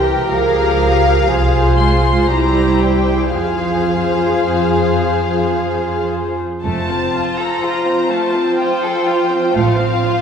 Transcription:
0.00 0.26 C2 soft
0.00 0.28 E3 soft
0.00 0.30 G4 soft
0.00 1.23 G4 soft
0.00 1.27 A#4 soft
0.00 0.30 G5 medium
0.29 1.27 C#2 soft
0.29 1.24 F3 soft
0.29 1.26 G#4 soft
0.29 1.25 A#4 soft
0.29 1.78 F5 medium
1.25 2.27 C2 soft
1.25 1.76 F3 soft
1.25 2.28 F4 soft
1.25 1.78 G#4 soft
1.25 2.30 G#4 soft
1.25 3.34 C5 soft
1.77 2.29 G#3 soft
1.77 2.28 F4 soft
1.77 2.28 C6 soft
2.28 3.33 C2 soft
2.28 3.35 G3 soft
2.28 3.35 E4 soft
2.28 3.35 G4 soft
2.28 2.82 A#5 soft
2.81 3.35 G5 soft
3.35 6.43 F2 soft
3.35 6.43 F3 soft
3.35 6.39 F4 soft
3.35 6.07 G#4 soft
3.35 6.44 G#4 soft
3.35 6.40 C5 soft
3.35 6.08 F5 soft
6.64 7.44 F1 soft
6.64 7.44 F2 soft
6.64 10.21 F3 soft
6.64 6.88 A3 soft
6.64 10.21 F4 soft
6.64 10.21 C5 soft
6.64 7.35 A5 medium
6.90 7.14 C4 soft
7.13 7.38 F4 soft
7.38 7.63 A4 soft
7.38 8.11 A#5 soft
7.62 7.87 F4 soft
7.85 8.10 C4 soft
8.09 8.34 A3 soft
8.09 8.59 A5 soft
8.34 8.59 C4 soft
8.59 8.83 F4 soft
8.59 9.54 G5 medium
8.82 9.07 A4 soft
9.06 9.31 F4 soft
9.30 9.55 C4 soft
9.54 10.21 A1 soft
9.54 10.21 A2 medium
9.54 9.77 A3 soft
9.54 10.21 F5 soft
9.78 10.03 C4 soft
10.03 10.21 F4 soft

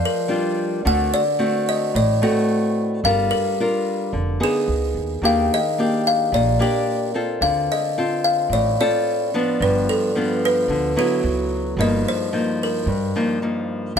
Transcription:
0.00 0.82 F3 medium
0.05 0.89 A#4 medium
0.28 0.82 G3 medium
0.28 0.82 D4 medium
0.28 0.83 F4 medium
0.85 1.11 D2 medium
0.85 1.92 D3 soft
0.85 1.21 A3 soft
0.85 1.21 C4 medium
0.85 1.21 F#4 medium
0.85 0.99 F#5 medium
1.14 1.64 D5 medium
1.39 1.94 A3 soft
1.39 1.94 C4 medium
1.39 1.94 F#4 medium
1.69 1.96 D#5 medium
1.94 2.21 A1 medium
1.94 3.01 A2 soft
1.94 2.24 D5 medium
2.22 3.00 A3 medium
2.22 3.00 C4 medium
2.22 3.00 F#4 medium
2.22 2.73 A4 medium
3.04 3.29 G1 medium
3.04 4.11 G3 medium
3.04 3.55 D4 soft
3.04 3.55 F4 soft
3.04 3.55 A#4 medium
3.04 3.33 F5 medium
3.31 4.36 A#4 medium
3.60 4.14 D4 soft
3.60 4.14 F4 medium
3.60 4.14 A#4 medium
4.13 4.39 F1 medium
4.13 4.65 D3 medium
4.40 5.20 B3 medium
4.40 5.20 D#4 medium
4.40 5.21 G#4 medium
4.40 5.27 G#4 medium
4.68 4.93 C#2 medium
4.95 5.20 D#2 medium
5.22 5.48 D#2 medium
5.22 6.29 D#3 soft
5.22 5.58 A#3 medium
5.22 5.58 D4 soft
5.22 5.59 G4 medium
5.22 5.52 F5 medium
5.54 6.08 D#5 medium
5.78 6.56 A#3 soft
5.78 6.56 D4 medium
5.78 6.56 G4 medium
6.07 6.34 F5 medium
6.32 6.57 A#1 medium
6.32 7.39 A#2 soft
6.32 6.59 D5 medium
6.59 7.10 A#3 medium
6.59 7.10 D4 medium
6.59 7.10 G4 medium
6.59 7.45 A#4 medium
7.14 7.92 C4 medium
7.14 7.92 F4 medium
7.14 7.92 A4 medium
7.41 7.66 D2 medium
7.41 8.48 D3 soft
7.41 7.70 F5 medium
7.72 8.26 D#5 medium
7.98 8.74 C4 medium
7.98 8.75 F4 soft
7.98 8.75 A4 medium
8.24 8.52 F5 medium
8.49 8.75 A1 medium
8.49 9.58 A2 soft
8.49 8.77 D5 medium
8.80 9.29 C4 medium
8.80 9.29 F4 medium
8.80 9.29 A4 medium
8.80 9.63 D5 medium
9.34 10.11 F3 medium
9.34 10.11 B3 medium
9.34 10.11 D4 medium
9.60 9.85 G1 loud
9.60 10.67 G2 medium
9.60 9.86 B4 medium
9.89 10.39 A4 medium
10.15 10.92 F3 soft
10.15 10.92 B3 medium
10.15 10.92 D4 medium
10.45 10.94 B4 medium
10.68 10.94 D2 medium
10.68 11.21 D3 medium
10.96 11.74 F#3 medium
10.96 11.74 B3 medium
10.96 11.74 E4 medium
10.96 11.82 F#4 medium
11.23 11.74 C#2 medium
11.77 12.03 G1 medium
11.77 12.84 G2 soft
11.77 12.28 F3 medium
11.77 12.28 A#3 soft
11.77 12.29 D#4 soft
11.77 12.07 D#5 medium
12.08 12.63 C5 medium
12.33 12.87 F3 medium
12.33 12.87 A#3 medium
12.33 12.87 D#4 medium
12.63 13.39 A#4 medium
12.86 13.12 G2 medium
12.86 13.94 G2 medium
13.16 13.38 F3 medium
13.16 13.38 A#3 medium
13.16 13.38 D#4 medium
13.42 13.94 F3 soft
13.42 13.94 A#3 soft
13.42 13.94 D#4 medium
13.96 13.99 A#1 medium

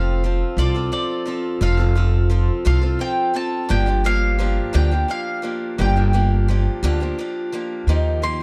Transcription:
0.00 0.41 F1 loud
0.00 0.22 F3 medium
0.00 0.23 C4 medium
0.00 0.24 F4 medium
0.00 0.24 A4 medium
0.00 0.59 F5 loud
0.24 0.57 F3 medium
0.24 0.57 C4 medium
0.24 0.58 F4 medium
0.24 0.58 A4 medium
0.57 0.86 C2 medium
0.57 0.75 F3 medium
0.57 0.75 C4 medium
0.57 0.74 F4 medium
0.57 0.73 A4 medium
0.57 0.90 D5 medium
0.75 0.91 C4 soft
0.75 0.92 F4 medium
0.75 0.92 A4 medium
0.92 1.24 F3 medium
0.92 1.25 C4 medium
0.92 1.26 F4 medium
0.92 1.27 A4 medium
0.92 1.58 D5 medium
1.26 1.60 F3 medium
1.26 1.60 C4 medium
1.26 1.61 F4 medium
1.26 1.61 A4 medium
1.61 2.49 F1 medium
1.61 1.79 F3 medium
1.61 1.79 C4 medium
1.61 1.78 F4 medium
1.61 1.76 A4 medium
1.61 2.62 F5 medium
1.77 1.95 C4 soft
1.77 1.95 F4 soft
1.77 1.96 A4 medium
1.95 2.28 F3 medium
1.95 2.29 C4 medium
1.95 2.30 F4 medium
1.95 2.31 A4 medium
2.30 2.64 F3 medium
2.30 2.64 C4 medium
2.30 2.65 F4 medium
2.30 2.65 A4 medium
2.65 2.95 C2 loud
2.65 2.83 F3 medium
2.65 2.82 C4 medium
2.65 2.81 F4 medium
2.65 2.80 A4 medium
2.65 3.01 F5 medium
2.81 2.99 C4 soft
2.81 3.00 F4 soft
2.81 3.00 A4 medium
2.99 3.32 F3 medium
2.99 3.33 C4 medium
2.99 3.34 F4 medium
2.99 3.34 A4 medium
2.99 3.36 G5 medium
3.34 3.68 F3 medium
3.34 3.69 C4 medium
3.34 3.69 F4 medium
3.34 3.70 A4 medium
3.34 3.70 A5 medium
3.69 4.58 G1 medium
3.69 3.87 G2 medium
3.69 3.87 D3 medium
3.69 3.87 F3 medium
3.69 3.87 A#3 medium
3.69 3.86 D4 medium
3.69 3.85 G4 medium
3.69 4.03 G5 medium
3.86 4.03 F3 soft
3.86 4.04 A#3 medium
3.86 4.05 D4 medium
3.86 4.04 G4 medium
4.04 4.37 F3 medium
4.04 4.38 A#3 medium
4.04 4.39 D4 medium
4.04 4.39 G4 medium
4.04 4.75 F5 loud
4.39 4.73 F3 medium
4.39 4.73 A#3 medium
4.39 4.73 D4 medium
4.39 4.73 G4 medium
4.73 5.04 D2 loud
4.73 4.91 G2 medium
4.73 4.91 D3 medium
4.73 4.92 F3 medium
4.73 4.91 A#3 medium
4.73 4.91 D4 medium
4.73 4.90 G4 medium
4.73 5.10 G5 medium
4.91 5.07 F3 soft
4.91 5.08 A#3 medium
4.91 5.08 D4 soft
4.91 5.09 G4 medium
5.08 5.41 F3 medium
5.08 5.42 A#3 medium
5.08 5.42 D4 medium
5.08 5.43 G4 medium
5.08 5.76 F5 medium
5.42 5.78 F3 medium
5.42 5.78 A#3 medium
5.42 5.78 D4 medium
5.42 5.79 G4 medium
5.78 6.67 G1 loud
5.78 5.96 G2 medium
5.78 5.96 D3 medium
5.78 5.96 F3 medium
5.78 5.96 A#3 medium
5.78 5.95 D4 medium
5.78 5.94 G4 medium
5.78 7.50 G5 medium
5.96 6.12 F3 medium
5.96 6.13 A#3 soft
5.96 6.13 D4 medium
5.96 6.13 G4 medium
6.13 6.47 F3 medium
6.13 6.48 A#3 medium
6.13 6.49 D4 medium
6.13 6.49 G4 medium
6.48 6.82 F3 medium
6.48 6.83 A#3 medium
6.48 6.83 D4 medium
6.48 6.84 G4 medium
6.83 7.12 D2 medium
6.83 7.00 G2 medium
6.83 7.01 D3 loud
6.83 7.01 F3 loud
6.83 7.01 A#3 loud
6.83 7.00 D4 medium
6.83 6.99 G4 medium
7.00 7.17 F3 medium
7.00 7.18 A#3 medium
7.00 7.18 D4 medium
7.00 7.18 G4 medium
7.18 7.51 F3 medium
7.18 7.52 A#3 medium
7.18 7.53 D4 medium
7.18 7.53 G4 medium
7.52 7.87 F3 medium
7.52 7.88 A#3 medium
7.52 7.88 D4 medium
7.52 7.88 G4 medium
7.87 8.43 D#2 medium
7.87 8.22 D#3 medium
7.87 8.21 F3 medium
7.87 8.22 A#3 medium
7.87 8.22 D#4 medium
7.87 8.23 G4 medium
8.22 8.40 F3 medium
8.22 8.40 A#3 medium
8.22 8.40 D#4 medium
8.22 8.39 G4 medium
8.22 8.43 C6 medium

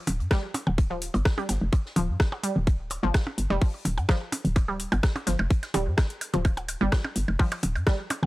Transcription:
0.07 0.21 D1 medium
0.07 closed hi-hat medium
0.07 open hi-hat medium
0.07 percussion blips medium
0.20 0.28 G2 medium
0.20 closed hi-hat soft
0.31 0.37 G3 medium
0.31 kick loud
0.31 cross-stick medium
0.31 snare loud
0.31 closed hi-hat medium
0.54 closed hi-hat medium
0.54 open hi-hat medium
0.54 percussion blips medium
0.54 percussion blips soft
0.67 1.09 D1 loud
0.67 percussion blips medium
0.78 kick loud
0.78 closed hi-hat medium
0.90 0.94 F3 medium
1.02 closed hi-hat medium
1.02 open hi-hat loud
1.14 1.22 G1 loud
1.14 closed hi-hat soft
1.14 percussion blips soft
1.25 kick loud
1.25 cross-stick loud
1.25 snare loud
1.25 closed hi-hat medium
1.38 1.43 G3 medium
1.38 closed hi-hat soft
1.38 percussion blips medium
1.49 1.58 G1 medium
1.49 snare soft
1.49 closed hi-hat medium
1.49 open hi-hat loud
1.49 percussion blips medium
1.61 1.69 F1 medium
1.73 kick loud
1.73 closed hi-hat medium
1.73 percussion blips soft
1.86 snare soft
1.96 2.10 D1 loud
1.96 2.00 F3 medium
1.96 closed hi-hat medium
1.96 open hi-hat medium
1.96 percussion blips medium
2.09 2.17 G2 medium
2.20 kick loud
2.20 cross-stick medium
2.20 snare loud
2.20 closed hi-hat medium
2.32 percussion blips medium
2.32 percussion blips soft
2.43 2.50 G3 medium
2.43 closed hi-hat medium
2.43 open hi-hat medium
2.56 2.98 D1 medium
2.67 kick loud
2.67 closed hi-hat medium
2.90 closed hi-hat medium
2.90 open hi-hat loud
2.90 percussion blips soft
3.03 3.11 G1 loud
3.03 3.07 F3 medium
3.14 kick loud
3.14 cross-stick medium
3.14 snare loud
3.14 closed hi-hat medium
3.14 open hi-hat soft
3.14 percussion blips medium
3.27 percussion blips medium
3.38 3.47 G1 medium
3.38 closed hi-hat medium
3.38 open hi-hat loud
3.50 3.58 F1 medium
3.50 3.56 G3 medium
3.50 percussion blips soft
3.61 kick loud
3.61 open hi-hat medium
3.85 3.99 D1 loud
3.85 closed hi-hat medium
3.85 open hi-hat medium
3.85 percussion blips medium
3.97 4.06 G2 medium
3.97 closed hi-hat soft
3.97 percussion blips medium
4.09 4.13 F3 medium
4.09 kick loud
4.09 cross-stick medium
4.09 snare loud
4.09 closed hi-hat medium
4.09 percussion blips soft
4.32 closed hi-hat medium
4.32 open hi-hat medium
4.32 percussion blips medium
4.45 4.86 D1 loud
4.45 open hi-hat soft
4.56 kick loud
4.56 closed hi-hat medium
4.56 percussion blips soft
4.68 4.74 G3 medium
4.80 closed hi-hat medium
4.80 open hi-hat medium
4.92 5.00 G1 loud
4.92 closed hi-hat soft
4.92 percussion blips medium
5.03 kick loud
5.03 cross-stick medium
5.03 snare loud
5.03 closed hi-hat medium
5.16 closed hi-hat soft
5.16 percussion blips medium
5.16 percussion blips soft
5.27 5.36 G1 medium
5.27 5.29 F3 medium
5.27 snare soft
5.27 closed hi-hat medium
5.27 open hi-hat medium
5.39 5.47 F1 medium
5.39 percussion blips medium
5.50 kick loud
5.50 closed hi-hat medium
5.63 snare soft
5.63 closed hi-hat soft
5.63 percussion blips soft
5.74 5.88 D1 medium
5.74 5.80 G3 medium
5.74 closed hi-hat medium
5.74 open hi-hat medium
5.74 percussion blips medium
5.74 percussion blips soft
5.87 5.95 G2 medium
5.97 kick loud
5.97 cross-stick medium
5.97 snare loud
5.97 closed hi-hat medium
5.97 percussion blips medium
6.10 closed hi-hat soft
6.21 closed hi-hat medium
6.21 open hi-hat medium
6.21 percussion blips soft
6.34 6.75 D1 medium
6.34 6.36 F3 medium
6.34 closed hi-hat soft
6.34 percussion blips soft
6.45 kick loud
6.45 closed hi-hat medium
6.45 percussion blips medium
6.57 closed hi-hat soft
6.57 percussion blips medium
6.68 closed hi-hat medium
6.68 open hi-hat medium
6.68 percussion blips soft
6.81 6.89 G1 loud
6.81 6.87 G3 medium
6.92 kick loud
6.92 cross-stick medium
6.92 snare loud
6.92 closed hi-hat medium
6.92 percussion blips soft
7.04 percussion blips medium
7.16 7.25 G1 medium
7.16 closed hi-hat medium
7.16 open hi-hat medium
7.28 7.36 F1 medium
7.28 percussion blips soft
7.39 7.42 F3 medium
7.39 kick loud
7.39 open hi-hat medium
7.39 percussion blips medium
7.52 closed hi-hat soft
7.52 percussion blips medium
7.52 percussion blips soft
7.63 7.77 D1 medium
7.63 closed hi-hat medium
7.63 open hi-hat medium
7.63 percussion blips medium
7.75 7.84 G2 medium
7.75 closed hi-hat soft
7.75 percussion blips soft
7.87 7.93 G3 medium
7.87 kick loud
7.87 cross-stick medium
7.87 snare loud
7.87 closed hi-hat medium
8.10 closed hi-hat medium
8.10 open hi-hat medium
8.10 percussion blips medium
8.10 percussion blips soft
8.23 8.26 D1 medium
8.23 percussion blips medium

